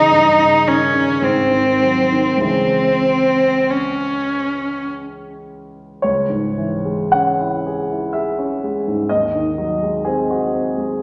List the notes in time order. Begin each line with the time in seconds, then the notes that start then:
Already playing: F#2 C#3 E3 D#4
0.09 G2
0.38 C#3
0.65 D#3 C#4
0.92 C#3
1.22 G#2 C4
1.50 D#3
1.82 F#3
2.12 D#3
2.37 C#2 E3 G#3 C#4
2.46 C4
3.70 C#4
6.02 C#2 C#5
6.29 G#2
6.58 E3
6.85 G#3
7.12 C#4 F#5
7.40 E4
7.66 G#4
7.91 E4
8.13 G#4 E5
8.39 C#4
8.64 G#3
8.87 G#2
9.09 D#2 D#5
9.35 D#3
9.58 F#3
9.83 G#3
10.05 C4 G#4
10.30 F#4
10.53 C4
10.78 G#3